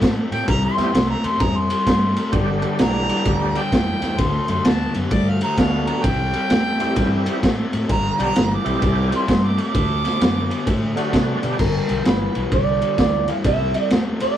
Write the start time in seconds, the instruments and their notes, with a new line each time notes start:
0.02 fingered electric bass A2, overdriven electric guitar C3 A3, kick, snare, ride
0.31 fingered electric bass A2, overdriven electric guitar C3 A3, harmonica G5, ride
0.48 fingered electric bass C2, overdriven electric guitar C3 G3, harmonica A#5, kick, ride
0.65 harmonica C6
0.77 fingered electric bass E2, overdriven electric guitar C3 G3, tonewheel organ E3 G3 C4 E4 G4, snare, ride
0.93 fingered electric bass C2, overdriven electric guitar C3 A3, snare, ride
1.10 harmonica A#5
1.23 fingered electric bass E2, overdriven electric guitar C3 A3, harmonica C6, ride
1.40 fingered electric bass F2, overdriven electric guitar C3 G3, harmonica A#5, kick, snare, ride
1.57 harmonica C6
1.70 overdriven electric guitar C3 G3, ride
1.86 fingered electric bass G2, overdriven electric guitar C3 A3, kick, snare, ride
2.16 overdriven electric guitar C3 A3, ride
2.32 fingered electric bass G1, overdriven electric guitar G2 D3, tonewheel organ D3 G3 B3 D4 G4, kick, ride
2.62 overdriven electric guitar G2 D3, ride
2.79 fingered electric bass B1, overdriven electric guitar G2 E3, harmonica A#5, snare, ride
3.09 overdriven electric guitar G2 E3, ride
3.25 fingered electric bass D2, overdriven electric guitar G2 D3, kick, ride
3.55 overdriven electric guitar G2 D3, harmonica G5, ride
3.72 fingered electric bass F2, overdriven electric guitar G2 E3, kick, snare, ride
4.02 fingered electric bass E2, overdriven electric guitar G2 E3, snare, ride
4.18 fingered electric bass D2, overdriven electric guitar D3 A3, harmonica C6, kick, snare, ride
4.48 fingered electric bass F#2, overdriven electric guitar D3 A3, harmonica C6, ride
4.64 fingered electric bass D2, overdriven electric guitar D3 B3, harmonica A5, snare, ride
4.94 fingered electric bass F#2, overdriven electric guitar D3 B3, ride
5.11 fingered electric bass G2, overdriven electric guitar D3 A3, harmonica D5, kick, ride
5.28 harmonica F5
5.41 overdriven electric guitar D3 A3, harmonica A#5, ride
5.57 fingered electric bass D2, tonewheel organ D3 F#3 A3 D4 F#4, overdriven electric guitar D3 B3, harmonica F5, kick, snare, ride
5.87 overdriven electric guitar D3 B3, harmonica A#5, ride
6.03 fingered electric bass C2, overdriven electric guitar C3 G3, harmonica G5, kick, ride
6.34 overdriven electric guitar C3 G3, ride
6.50 fingered electric bass E2, overdriven electric guitar C3 A3, snare, ride
6.79 overdriven electric guitar C3 A3, tonewheel organ E3 G3 C4 E4 G4, ride
6.96 fingered electric bass G2, overdriven electric guitar C3 G3, kick, snare, ride
7.26 overdriven electric guitar C3 G3, ride
7.43 fingered electric bass A2, overdriven electric guitar C3 A3, kick, snare, ride
7.72 fingered electric bass A2, overdriven electric guitar C3 A3, ride
7.89 fingered electric bass G1, overdriven electric guitar G2 D3, harmonica A#5, kick, ride
8.18 fingered electric bass B1, overdriven electric guitar G2 D3, tonewheel organ D3 G3 B3 D4 G4, ride
8.23 harmonica A#5
8.35 fingered electric bass G1, overdriven electric guitar G2 E3, snare, ride
8.54 harmonica D6
8.64 fingered electric bass B1, overdriven electric guitar G2 E3, tonewheel organ E3 G3 C4 E4 G4, ride
8.82 fingered electric bass C2, overdriven electric guitar C3 G3, kick, ride
9.11 overdriven electric guitar C3 G3, harmonica C6, ride
9.28 fingered electric bass G2, overdriven electric guitar C3 A3, kick, snare, ride
9.45 harmonica D6
9.58 overdriven electric guitar C3 A3, ride
9.62 harmonica D6
9.74 fingered electric bass D2, overdriven electric guitar D3 A3, kick, ride
10.04 overdriven electric guitar D3 A3, snare, ride
10.20 fingered electric bass F#2, overdriven electric guitar D3 B3, snare, ride
10.50 overdriven electric guitar D3 B3, ride
10.67 fingered electric bass A2, overdriven electric guitar D3 A3, kick, ride
10.96 overdriven electric guitar D3 A3, tonewheel organ D3 F#3 A3 D4 F#4, ride
11.13 fingered electric bass C3, overdriven electric guitar D3 B3, kick, snare, ride
11.41 fingered electric bass B2, tonewheel organ D3 G3 B3 D4 G4, overdriven electric guitar D3 B3, ride
11.59 fingered electric bass G1, overdriven electric guitar G2 D3, clean electric guitar A#4, kick, snare, crash
11.88 fingered electric bass B1, overdriven electric guitar G2 D3, ride
12.04 fingered electric bass G1, overdriven electric guitar G2 E3, clean electric guitar B4, snare, ride
12.35 fingered electric bass B1, overdriven electric guitar G2 E3, ride
12.51 fingered electric bass C2, overdriven electric guitar G2 D3, clean electric guitar D5, kick, ride
12.81 overdriven electric guitar G2 D3, ride
12.98 fingered electric bass D2, overdriven electric guitar G2 E3, clean electric guitar D5, kick, snare, ride
13.28 overdriven electric guitar G2 E3, clean electric guitar F5, ride
13.44 fingered electric bass C2, overdriven electric guitar C3 G3, clean electric guitar E5, kick, snare, ride
13.74 overdriven electric guitar C3 G3, ride
13.90 fingered electric bass E2, overdriven electric guitar C3 A3, snare, ride
14.20 overdriven electric guitar C3 A3, clean electric guitar D5, ride